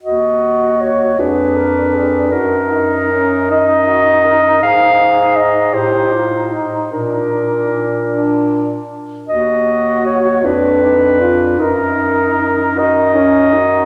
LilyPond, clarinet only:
\new Staff \with { instrumentName = "Clarinet" } { \time 6/8 \key ees \minor \tempo 4. = 52 ees''4 des''8 ces''4. | bes'4. ees''4. | f''4 ees''8 c''4 r8 | bes'2~ bes'8 r8 |
ees''4 des''8 b'4. | bes'4. ees''4. | }